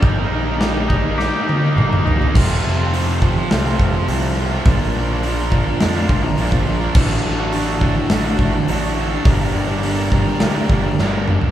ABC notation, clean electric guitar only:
X:1
M:4/4
L:1/8
Q:1/4=104
K:Fmix
V:1 name="Clean electric guitar"
G,2 G, E G E B, E | z8 | z8 | z8 |
z8 |]